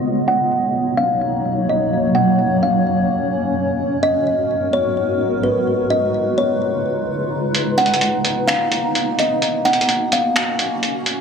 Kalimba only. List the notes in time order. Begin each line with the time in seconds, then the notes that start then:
0.28 F#5
0.97 F5
1.69 D#5
2.15 F#5
2.63 F5
4.03 D#5
4.73 C#5
5.43 B4
5.90 D#5
6.38 C#5
7.78 F#5
8.48 F5
9.20 D#5
9.65 F#5
10.13 F5